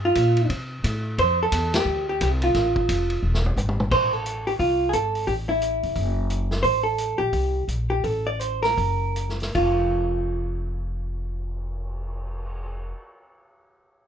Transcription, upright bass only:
Already playing: G2
0.16 A#2
0.50 C3
0.84 A2
1.18 F2
1.52 E2
1.85 D2
2.21 C2
2.55 A1
2.89 F1
3.23 E1
3.56 G#1
3.91 A1
4.60 C2
4.93 G#1
5.28 A1
5.83 F1
5.96 F#1
6.64 A1
7.19 A#1
7.33 C2
7.68 A#1
8.04 A1
8.78 F#1
9.55 F1

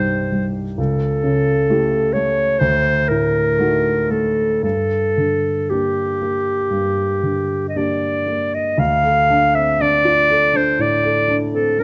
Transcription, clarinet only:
Already playing: C5
0.79 A4
2.13 C#5
2.59 C5
3.09 A#4
4.11 A4
4.64 A4
5.70 G4
7.69 D#5
7.77 D5
8.54 D#5
8.79 F5
9.55 E5
9.81 D5
10.56 C5
10.82 D5
11.54 A4
11.80 A#4

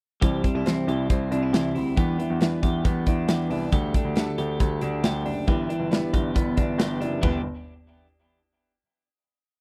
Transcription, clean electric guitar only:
0.21 G3 G4
0.44 D4
0.55 E4
0.66 C4
0.88 G4
1.10 C4
1.32 D4
1.43 E4
1.53 G4
1.75 E4
1.97 B3 G4
2.19 D4
2.41 B3
2.63 G4
2.85 B3
3.07 D4
3.29 G4
3.51 D4
3.72 A3 G4
3.94 D4
4.16 A3
4.38 G4
4.60 A3
4.82 D4
5.04 G4
5.26 D4
5.48 E3 G4
5.69 D4
5.91 B3
6.13 G4
6.35 B3
6.57 D4
6.79 G4
7.01 D4
7.22 E3 B3 D4 G4

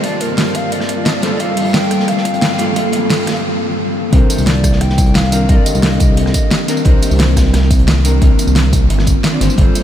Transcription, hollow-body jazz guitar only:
0.01 G3 A#3 F4
0.06 A5
1.22 G3 A#3 F4 A4
1.38 G3 A#3 F4
1.43 A4
2.58 G3 A#3 F4 A4
2.74 G3 A#3 F4
2.79 A4
4.10 D#3 C4 D4
4.15 A#4
5.31 D#3 C4 D4 A#4
5.46 D3 D#3 C4
5.51 A#4
6.67 D#3 C4 D4 A#4
6.83 D#3 C4 D4
6.88 A#4
8.03 D#3 C4 D4 A#4
8.19 D#3 C4 D4
8.24 A#4
9.31 D#3 C4 D4 D5
9.40 D#3 C4 D4 C5
9.56 G3 A#3 F4
9.60 A4

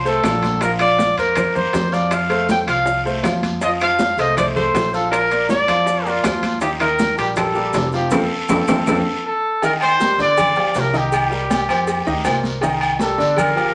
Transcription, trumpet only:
0.07 A4
0.63 A#4
0.81 D5
1.18 A#4
1.56 C5
1.93 D5
2.13 F5
2.51 G5
2.69 F5
3.63 D#5
3.83 F5
4.20 D#5
4.38 D5
4.55 C5
4.94 A4
5.11 A#4
5.50 D5
6.07 F4
6.62 G4
6.81 A#4
7.19 G4
7.38 A4
7.95 G4
8.13 A4
9.26 A4
9.64 A#4
9.83 C5
10.22 D5
10.80 A#4
10.97 G4
13.02 A4
13.39 A#4

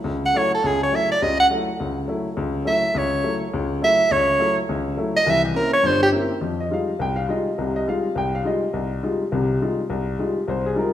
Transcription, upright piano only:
0.04 C#2
0.34 F#3 A3 E4
0.64 C#2
0.92 F#3 A3 E4
1.22 C#2 C#3
1.51 F#3 A3 E4
1.80 C#2
2.08 F#3 A3 E4
2.37 C#2
2.65 F#3 A3 E4
2.95 C#2
3.24 F#3 A3 E4
3.54 C#2
3.81 F#3 A3 E4
4.11 C#2
4.39 F#3 A3 E4
4.69 C#2
4.97 F#3 A3 E4
5.26 C2 E3
5.55 A#3 C4 C#4 E4
5.83 G1 G2
6.12 A#3 C4 C#4 E4
6.41 F2 F3
6.60 D#5
6.71 G3 G#3 D#4 F4 F5
6.99 C2 G5
7.16 F5
7.28 G3 G#3 D#4 F4 D#5
7.58 C2 C3
7.76 D#5
7.87 G3 G#3 D#4 F4 F5
8.15 C2 G5
8.35 F5
8.44 G3 G#3 D#4 F4 D#5
8.73 C2
9.03 G3 G#3 D#4 F4
9.32 C2 C3
9.61 G3 G#3 D#4 F4
9.90 C2
10.19 G3 G#3 D#4 F4
10.48 C2 C5
10.66 G#4
10.75 G3 G#3 D#4 F4 A#4

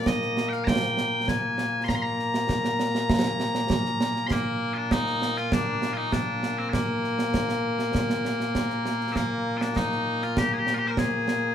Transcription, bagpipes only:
Already playing: A#2 A#3
0.07 D#5
0.49 F5 G5
0.64 G5 A#5
1.28 G#5
1.84 C6
1.89 A#5
1.95 C6
2.02 A#5
4.27 C6
4.31 A#3
4.74 D4 F4
4.92 D#4
5.38 F4
5.53 D4
5.93 D#4 F4
6.13 D4
6.58 C4
6.69 D4
6.73 A#3
9.12 A#3 C4
9.57 F4
9.62 D4
9.77 D#4
10.23 F4
10.38 G4
10.53 G#4
10.58 G4
10.74 F4
10.78 G4
10.87 A#4 C5
10.98 G#4

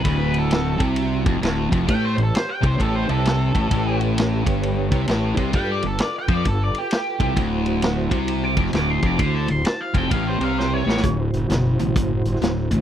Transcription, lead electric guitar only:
0.08 B4
0.39 A4
1.90 G5
2.05 C5
2.23 A4
2.35 C5
2.50 G5
2.67 C5
2.81 A4
2.96 C5
3.11 A4
5.56 G5
5.72 D5
5.87 A4
6.01 D5
6.19 G5
6.34 D5
6.48 A4
6.64 D5
6.78 G4
8.45 D6
8.76 D6
8.90 C6
9.06 D6
9.20 C6
9.35 A5
9.51 C6
9.66 A5
9.81 F5
9.97 G5
10.12 F5
10.28 C5
10.44 F5
10.58 C5
10.74 C#5

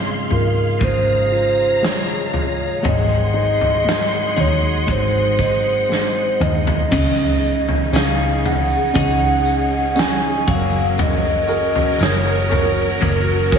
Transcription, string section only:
Already playing: G#4 F5 C6
0.82 A#5
2.85 D#5 F#5 C6
6.92 C#3 C#4 D#4 G#4
10.48 F#3 A#4
12.50 F#4

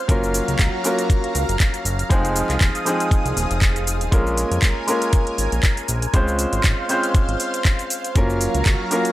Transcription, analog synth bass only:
0.09 F#1
0.48 C#2
0.59 C#2
1.35 C#2
1.49 F#1
1.85 F#1
2.10 F1
2.49 C2
2.61 D#1
3.25 C2
3.36 D#1
3.51 F1
4.01 D#1
4.12 A#1
4.51 F2
4.62 G#1
5.38 G#1
5.52 A#1
5.89 A#1
6.14 C#2
6.53 G#1
6.64 G#1
7.28 G#1
8.16 F#1
8.55 C#2
8.66 C#2

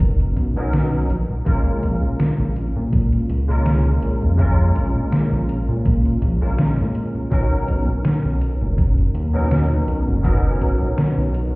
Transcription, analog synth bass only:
Already playing: F#1
0.37 B1
0.56 B1
1.10 A#1
1.83 A#1
2.39 A#1
2.76 A#2
3.29 C#2
4.03 A#1
4.22 F2
4.76 A#1
5.32 A#1
5.69 A#2
6.22 A#1
6.42 A#1
6.79 A#2
7.68 B1
8.25 B1
8.61 F#1
9.15 D#2
9.88 B1
10.08 F#1
10.61 B1
11.18 B1

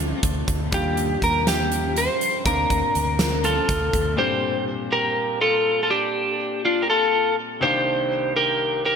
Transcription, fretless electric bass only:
Already playing: D2
0.23 D2
0.48 D2
0.73 D#2
1.22 D#2
2.45 D2
2.70 D2
2.95 D2
3.69 D2
3.93 D2

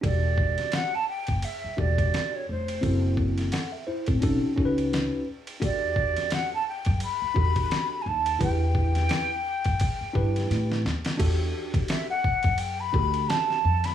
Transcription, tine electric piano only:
0.01 D4 F#4 G4 A4
1.77 D4 F#4 G4 A4
2.81 C4 E4 F#4 A4
3.53 A4 F#5
3.72 E5
3.87 E4 C5
4.07 C4 A4
4.20 C#4 D#4 F#4 A4
4.56 C#4 D#4 F#4 A4
4.65 B4
5.60 D4 F#4 G4 A4
7.34 D4 F#4 G4 A4
8.39 D4 E4 G4 B4
10.13 D4 E4 G4 B4
11.18 D4 F#4 G4 A4
12.93 D4 F#4 G4 A4

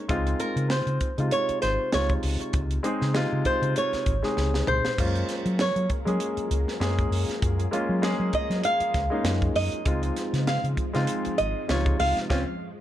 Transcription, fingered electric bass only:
0.09 C#2
0.56 C#3
0.86 C#3
1.01 muted fingered electric bass stroke
1.18 C#3
1.49 muted fingered electric bass stroke
1.63 G#1
1.94 C#2
2.24 C#2
2.40 muted fingered electric bass stroke
2.54 C#2
3.02 C#3
3.32 C#3
3.45 muted fingered electric bass stroke
3.62 C#3
3.93 muted fingered electric bass stroke
4.06 G#1
4.37 C#2
4.68 C#2
4.86 muted fingered electric bass stroke
4.98 F#2
5.46 F#3
5.76 F#3
5.90 muted fingered electric bass stroke
6.06 F#3
6.37 muted fingered electric bass stroke
6.50 C#2
6.80 F#2
7.11 F#2
7.29 muted fingered electric bass stroke
7.42 F#2
7.89 F#3
8.20 F#3
8.33 muted fingered electric bass stroke
8.50 F#3
8.80 muted fingered electric bass stroke
8.94 C#2
9.24 F#2
9.56 F#2
9.73 muted fingered electric bass stroke
9.86 C#2
10.33 C#3
10.64 C#3
10.77 muted fingered electric bass stroke
10.95 C#3
11.26 muted fingered electric bass stroke
11.39 G#1
11.69 C#2
12.00 C#2
12.17 muted fingered electric bass stroke
12.30 C#2

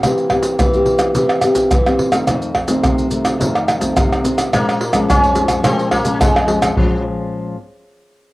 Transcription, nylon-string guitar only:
0.03 E3 A#3 C4 G4
0.31 A#3 C4 G4
0.59 E3
0.74 A#3 C4 G4
1.15 E3 A#3 C4 G4
1.43 A#3 C4 G4
1.72 E3
1.86 A#3 C4 G4
2.12 D#3 A3 C4
2.28 F2
2.68 D#3 A3 C4
2.84 C3
3.11 D#3 A3 C4
3.39 F2 D#3 A3 C4
3.80 D#3 A3 C4
3.97 C3
4.23 D#3 A3 C4
4.53 A#2 F3 G#3 C#4
4.93 F3 G#3 C#4
5.08 F2
5.34 F3 G#3 C#4
5.63 A#2 F3 G#3 C#4
6.04 F3 G#3 C#4
6.19 F2
6.47 F3 G#3 C#4
6.76 A#2 F3 G#3 C#4

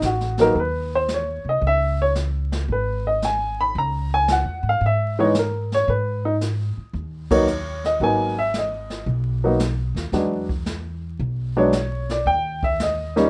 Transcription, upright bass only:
0.02 A1
0.55 D#2
1.45 C2
1.61 C#2
2.68 G#1
3.75 C#2
4.45 E2
4.63 G#2
4.81 G#2
5.88 G#2
6.77 muted upright bass stroke
6.93 D#2
8.00 G#1
9.06 B1
9.95 D#2
10.12 E2
11.19 B1
12.26 D#2

